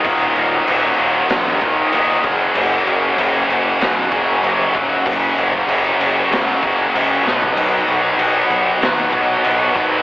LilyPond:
<<
  \new Staff \with { instrumentName = "Overdriven electric guitar" } { \clef bass \time 4/4 \key ges \major \tempo 4 = 96 <ees, bes, ees ges bes ees'>2~ <ees, bes, ees ges bes ees'>8 <ees, bes, ees ges bes ees'>8 <ees, bes, ees ges bes ees'>8 <ges, des ges bes des' ges'>8~ | <ges, des ges bes des' ges'>2 <ges, des ges bes des' ges'>8 <ges, des ges bes des' ges'>4 <ges, des ges bes des' ges'>8~ | <ges, des ges bes des' ges'>2 <ges, des ges bes des' ges'>8 <ges, des ges bes des' ges'>4 <b, fis b dis' fis'>8~ | <b, fis b dis' fis'>2 <b, fis b dis' fis'>8 <b, fis b dis' fis'>4 <b, fis b dis' fis'>8 | }
  \new Staff \with { instrumentName = "Distorted electric guitar" } { \clef bass \time 4/4 \key ges \major <ees, bes, ees>4. <ees, bes, ees>4. <ees, bes, ees>8 <ges, des ges>8~ | <ges, des ges>4 <ges, des ges>4. <ges, des ges>4 <ges, des ges>8~ | <ges, des ges>4 <ges, des ges>4. <ges, des ges>4 <b, fis b>8~ | <b, fis b>4 <b, fis b>4. <b, fis b>4 <b, fis b>8 | }
  \new Staff \with { instrumentName = "Picked electric bass" } { \clef bass \time 4/4 \key ges \major ees,,8 ees,,8 ees,,8 ees,,8 bes,,8 ees,,8 ees,,8 ges,,8 | ges,,8 ges,,8 ges,,8 ges,,8 ces,8 ges,,8 ges,,8 ees,,8 | ges,,8 ges,,8 ges,,8 ges,,8 des,8 ges,,8 des,8 b,,8 | b,,8 b,,8 b,,8 b,,8 dis,8 b,,8 b,,8 aes,,8 | }
  \new DrumStaff \with { instrumentName = "Drums" } \drummode { \time 4/4 <cymc bd>8 cymc8 cymc8 cymc8 <cymc sn>8 <cymc bd>8 cymc8 <cymc bd>8 | cymc8 cymc8 cymc8 cymc8 <cymc sn>8 <cymc bd>8 cymc8 <cymc bd>8 | <cymc bd>8 cymc16 bd16 cymc8 cymc8 <cymc sn>8 <cymc bd>8 cymc8 sn16 tomfh16 | cymc8 cymc8 cymc8 cymc8 <cymc sn>8 <cymc bd>8 cymc8 <cymc bd>8 | }
>>